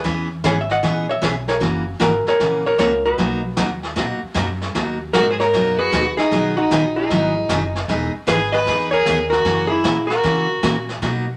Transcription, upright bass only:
0, 0, Header, 1, 3, 480
1, 0, Start_track
1, 0, Key_signature, 5, "major"
1, 0, Tempo, 392157
1, 58, Time_signature, 4, 2, 24, 8
1, 13916, End_track
2, 0, Start_track
2, 0, Title_t, "Upright bass"
2, 0, Program_c, 0, 32
2, 61, Note_on_c, 0, 40, 85
2, 524, Note_off_c, 0, 40, 0
2, 535, Note_on_c, 0, 32, 90
2, 1000, Note_off_c, 0, 32, 0
2, 1015, Note_on_c, 0, 34, 79
2, 1480, Note_off_c, 0, 34, 0
2, 1499, Note_on_c, 0, 35, 93
2, 1961, Note_off_c, 0, 35, 0
2, 1973, Note_on_c, 0, 30, 90
2, 2438, Note_off_c, 0, 30, 0
2, 2449, Note_on_c, 0, 32, 91
2, 2744, Note_off_c, 0, 32, 0
2, 2933, Note_on_c, 0, 34, 81
2, 3397, Note_off_c, 0, 34, 0
2, 3415, Note_on_c, 0, 37, 93
2, 3878, Note_off_c, 0, 37, 0
2, 3895, Note_on_c, 0, 35, 86
2, 4358, Note_off_c, 0, 35, 0
2, 4370, Note_on_c, 0, 39, 91
2, 4835, Note_off_c, 0, 39, 0
2, 4854, Note_on_c, 0, 46, 80
2, 5146, Note_off_c, 0, 46, 0
2, 5324, Note_on_c, 0, 42, 90
2, 5792, Note_off_c, 0, 42, 0
2, 5809, Note_on_c, 0, 39, 87
2, 6274, Note_off_c, 0, 39, 0
2, 6286, Note_on_c, 0, 44, 91
2, 6753, Note_off_c, 0, 44, 0
2, 6772, Note_on_c, 0, 42, 80
2, 7236, Note_off_c, 0, 42, 0
2, 7252, Note_on_c, 0, 39, 90
2, 7545, Note_off_c, 0, 39, 0
2, 7727, Note_on_c, 0, 35, 83
2, 8194, Note_off_c, 0, 35, 0
2, 8209, Note_on_c, 0, 34, 92
2, 8674, Note_off_c, 0, 34, 0
2, 8693, Note_on_c, 0, 32, 86
2, 9157, Note_off_c, 0, 32, 0
2, 9165, Note_on_c, 0, 30, 96
2, 9633, Note_off_c, 0, 30, 0
2, 9648, Note_on_c, 0, 28, 86
2, 9943, Note_off_c, 0, 28, 0
2, 10127, Note_on_c, 0, 32, 89
2, 10594, Note_off_c, 0, 32, 0
2, 10601, Note_on_c, 0, 40, 87
2, 11072, Note_off_c, 0, 40, 0
2, 11085, Note_on_c, 0, 39, 90
2, 11551, Note_off_c, 0, 39, 0
2, 11558, Note_on_c, 0, 42, 89
2, 12031, Note_off_c, 0, 42, 0
2, 12047, Note_on_c, 0, 46, 87
2, 12516, Note_off_c, 0, 46, 0
2, 12533, Note_on_c, 0, 49, 82
2, 13000, Note_off_c, 0, 49, 0
2, 13011, Note_on_c, 0, 46, 85
2, 13479, Note_off_c, 0, 46, 0
2, 13484, Note_on_c, 0, 47, 81
2, 13916, Note_off_c, 0, 47, 0
2, 13916, End_track
3, 0, Start_track
3, 0, Title_t, "Muted upright bass strokes"
3, 2767, Note_on_c, 9, 29, 38
3, 2889, Note_off_c, 9, 29, 0
3, 5169, Note_on_c, 9, 29, 38
3, 5291, Note_off_c, 9, 29, 0
3, 7567, Note_on_c, 9, 29, 38
3, 7689, Note_off_c, 9, 29, 0
3, 13916, End_track
0, 0, End_of_file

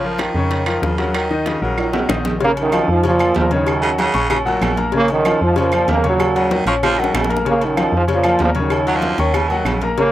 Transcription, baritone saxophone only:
0, 0, Header, 1, 2, 480
1, 0, Start_track
1, 0, Key_signature, -5, "minor"
1, 0, Tempo, 315623
1, 1740, Time_signature, 4, 2, 24, 8
1, 15389, End_track
2, 0, Start_track
2, 0, Title_t, "Baritone saxophone"
2, 0, Program_c, 0, 67
2, 0, Note_on_c, 0, 53, 94
2, 317, Note_on_c, 0, 51, 92
2, 340, Note_off_c, 0, 53, 0
2, 1270, Note_on_c, 0, 49, 81
2, 1293, Note_off_c, 0, 51, 0
2, 1740, Note_off_c, 0, 49, 0
2, 1749, Note_on_c, 0, 51, 92
2, 2232, Note_on_c, 0, 49, 86
2, 2255, Note_off_c, 0, 51, 0
2, 2463, Note_off_c, 0, 49, 0
2, 2472, Note_on_c, 0, 49, 80
2, 2716, Note_on_c, 0, 51, 75
2, 2739, Note_off_c, 0, 49, 0
2, 3431, Note_off_c, 0, 51, 0
2, 5810, Note_on_c, 0, 49, 106
2, 5922, Note_off_c, 0, 49, 0
2, 6059, Note_on_c, 0, 49, 112
2, 6510, Note_off_c, 0, 49, 0
2, 6532, Note_on_c, 0, 49, 99
2, 6644, Note_off_c, 0, 49, 0
2, 6794, Note_on_c, 0, 46, 91
2, 7349, Note_off_c, 0, 46, 0
2, 9655, Note_on_c, 0, 49, 88
2, 9899, Note_on_c, 0, 51, 100
2, 9922, Note_off_c, 0, 49, 0
2, 10131, Note_off_c, 0, 51, 0
2, 10141, Note_on_c, 0, 53, 103
2, 10249, Note_off_c, 0, 53, 0
2, 10393, Note_on_c, 0, 53, 111
2, 10627, Note_on_c, 0, 51, 96
2, 10650, Note_off_c, 0, 53, 0
2, 10866, Note_on_c, 0, 49, 76
2, 10889, Note_off_c, 0, 51, 0
2, 11225, Note_off_c, 0, 49, 0
2, 13505, Note_on_c, 0, 54, 106
2, 13616, Note_on_c, 0, 53, 106
2, 13639, Note_off_c, 0, 54, 0
2, 13976, Note_on_c, 0, 51, 95
2, 13999, Note_off_c, 0, 53, 0
2, 14210, Note_on_c, 0, 49, 92
2, 14233, Note_off_c, 0, 51, 0
2, 14434, Note_on_c, 0, 51, 87
2, 14457, Note_off_c, 0, 49, 0
2, 14685, Note_on_c, 0, 49, 77
2, 14708, Note_off_c, 0, 51, 0
2, 15052, Note_off_c, 0, 49, 0
2, 15389, End_track
0, 0, End_of_file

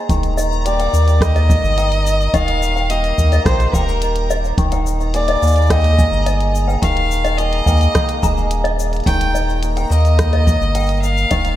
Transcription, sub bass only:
0, 0, Header, 1, 2, 480
1, 0, Start_track
1, 0, Key_signature, -3, "major"
1, 0, Tempo, 560748
1, 80, Time_signature, 4, 2, 24, 8
1, 9896, End_track
2, 0, Start_track
2, 0, Title_t, "Sub bass"
2, 0, Program_c, 0, 38
2, 80, Note_on_c, 0, 27, 103
2, 755, Note_off_c, 0, 27, 0
2, 798, Note_on_c, 0, 39, 89
2, 1354, Note_off_c, 0, 39, 0
2, 1398, Note_on_c, 0, 31, 88
2, 1954, Note_off_c, 0, 31, 0
2, 2001, Note_on_c, 0, 27, 112
2, 2676, Note_off_c, 0, 27, 0
2, 2723, Note_on_c, 0, 39, 84
2, 2905, Note_off_c, 0, 39, 0
2, 2958, Note_on_c, 0, 34, 90
2, 3143, Note_off_c, 0, 34, 0
2, 3196, Note_on_c, 0, 27, 83
2, 3873, Note_off_c, 0, 27, 0
2, 3918, Note_on_c, 0, 27, 112
2, 4594, Note_off_c, 0, 27, 0
2, 4642, Note_on_c, 0, 39, 80
2, 5196, Note_off_c, 0, 39, 0
2, 5238, Note_on_c, 0, 31, 92
2, 5794, Note_off_c, 0, 31, 0
2, 5841, Note_on_c, 0, 27, 97
2, 6516, Note_off_c, 0, 27, 0
2, 6559, Note_on_c, 0, 39, 83
2, 6744, Note_off_c, 0, 39, 0
2, 7046, Note_on_c, 0, 27, 94
2, 7718, Note_off_c, 0, 27, 0
2, 7757, Note_on_c, 0, 27, 102
2, 8434, Note_off_c, 0, 27, 0
2, 8477, Note_on_c, 0, 39, 87
2, 9034, Note_off_c, 0, 39, 0
2, 9078, Note_on_c, 0, 31, 88
2, 9634, Note_off_c, 0, 31, 0
2, 9683, Note_on_c, 0, 27, 105
2, 9896, Note_off_c, 0, 27, 0
2, 9896, End_track
0, 0, End_of_file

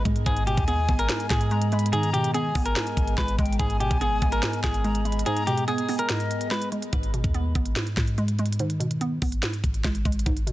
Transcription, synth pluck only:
0, 0, Header, 1, 2, 480
1, 0, Start_track
1, 0, Key_signature, 5, "minor"
1, 0, Tempo, 416667
1, 302, Time_signature, 4, 2, 24, 8
1, 12124, End_track
2, 0, Start_track
2, 0, Title_t, "Synth pluck"
2, 0, Program_c, 0, 84
2, 0, Note_on_c, 0, 44, 88
2, 0, Note_on_c, 0, 59, 86
2, 62, Note_on_c, 0, 56, 79
2, 288, Note_off_c, 0, 44, 0
2, 302, Note_off_c, 0, 56, 0
2, 302, Note_on_c, 0, 44, 98
2, 303, Note_off_c, 0, 59, 0
2, 542, Note_on_c, 0, 47, 83
2, 782, Note_on_c, 0, 59, 93
2, 1008, Note_off_c, 0, 59, 0
2, 1022, Note_on_c, 0, 59, 86
2, 1240, Note_off_c, 0, 44, 0
2, 1254, Note_on_c, 0, 44, 94
2, 1742, Note_off_c, 0, 47, 0
2, 1743, Note_on_c, 0, 56, 95
2, 1974, Note_off_c, 0, 56, 0
2, 1988, Note_on_c, 0, 56, 92
2, 2212, Note_off_c, 0, 44, 0
2, 2222, Note_off_c, 0, 59, 0
2, 2226, Note_on_c, 0, 44, 90
2, 2456, Note_on_c, 0, 47, 85
2, 2701, Note_on_c, 0, 59, 89
2, 2931, Note_off_c, 0, 59, 0
2, 2945, Note_on_c, 0, 59, 93
2, 3169, Note_off_c, 0, 44, 0
2, 3183, Note_on_c, 0, 44, 91
2, 3185, Note_off_c, 0, 56, 0
2, 3659, Note_off_c, 0, 47, 0
2, 3664, Note_on_c, 0, 56, 90
2, 3886, Note_off_c, 0, 56, 0
2, 3900, Note_on_c, 0, 56, 95
2, 4125, Note_off_c, 0, 44, 0
2, 4139, Note_on_c, 0, 44, 90
2, 4141, Note_off_c, 0, 56, 0
2, 4143, Note_off_c, 0, 59, 0
2, 4378, Note_on_c, 0, 47, 78
2, 4624, Note_on_c, 0, 59, 96
2, 4848, Note_off_c, 0, 59, 0
2, 4862, Note_on_c, 0, 59, 93
2, 5088, Note_off_c, 0, 44, 0
2, 5102, Note_on_c, 0, 44, 95
2, 5579, Note_on_c, 0, 56, 96
2, 5580, Note_off_c, 0, 47, 0
2, 5805, Note_off_c, 0, 56, 0
2, 5819, Note_on_c, 0, 56, 79
2, 6050, Note_off_c, 0, 44, 0
2, 6062, Note_off_c, 0, 59, 0
2, 6064, Note_on_c, 0, 44, 102
2, 6306, Note_on_c, 0, 47, 89
2, 6542, Note_on_c, 0, 59, 100
2, 6771, Note_off_c, 0, 59, 0
2, 6785, Note_on_c, 0, 59, 89
2, 7010, Note_off_c, 0, 44, 0
2, 7020, Note_off_c, 0, 56, 0
2, 7024, Note_on_c, 0, 44, 89
2, 7501, Note_on_c, 0, 56, 94
2, 7504, Note_off_c, 0, 47, 0
2, 7728, Note_off_c, 0, 56, 0
2, 7742, Note_on_c, 0, 56, 76
2, 7967, Note_off_c, 0, 44, 0
2, 7981, Note_on_c, 0, 44, 93
2, 7982, Note_off_c, 0, 56, 0
2, 7983, Note_off_c, 0, 59, 0
2, 8222, Note_on_c, 0, 47, 78
2, 8462, Note_on_c, 0, 59, 91
2, 8687, Note_off_c, 0, 59, 0
2, 8701, Note_on_c, 0, 59, 85
2, 8919, Note_off_c, 0, 44, 0
2, 8933, Note_on_c, 0, 44, 94
2, 9422, Note_off_c, 0, 47, 0
2, 9422, Note_on_c, 0, 56, 94
2, 9653, Note_off_c, 0, 56, 0
2, 9667, Note_on_c, 0, 56, 91
2, 9890, Note_off_c, 0, 44, 0
2, 9902, Note_off_c, 0, 59, 0
2, 9904, Note_on_c, 0, 44, 90
2, 10135, Note_on_c, 0, 47, 83
2, 10380, Note_on_c, 0, 59, 88
2, 10610, Note_off_c, 0, 59, 0
2, 10624, Note_on_c, 0, 59, 90
2, 10849, Note_off_c, 0, 44, 0
2, 10862, Note_on_c, 0, 44, 88
2, 10864, Note_off_c, 0, 56, 0
2, 11339, Note_off_c, 0, 47, 0
2, 11344, Note_on_c, 0, 56, 85
2, 11567, Note_off_c, 0, 56, 0
2, 11581, Note_on_c, 0, 56, 92
2, 11805, Note_off_c, 0, 44, 0
2, 11819, Note_on_c, 0, 44, 89
2, 11821, Note_off_c, 0, 56, 0
2, 11823, Note_off_c, 0, 59, 0
2, 12058, Note_on_c, 0, 47, 80
2, 12124, Note_off_c, 0, 44, 0
2, 12124, Note_off_c, 0, 47, 0
2, 12124, End_track
0, 0, End_of_file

